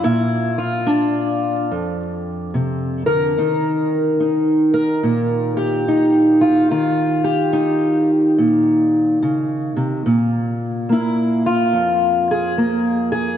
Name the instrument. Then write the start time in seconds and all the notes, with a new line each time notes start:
steel-string acoustic guitar
Already playing: F4
0.03 A#2 E4
0.58 F4
0.86 D4
1.71 F2
2.54 C3
3.06 D3 A#4
3.38 D#3 D#4
4.20 D#4
4.74 A#4
5.03 A#2
5.57 G4
5.88 D#4
6.41 F4
6.71 D#3 F4
7.24 G4
7.53 D#4
8.38 A#2
9.22 C#3
9.76 C3
10.06 A#2
10.89 A#3 E4
11.46 F4
11.73 F2
12.31 G#4
12.58 A#3
13.12 G#4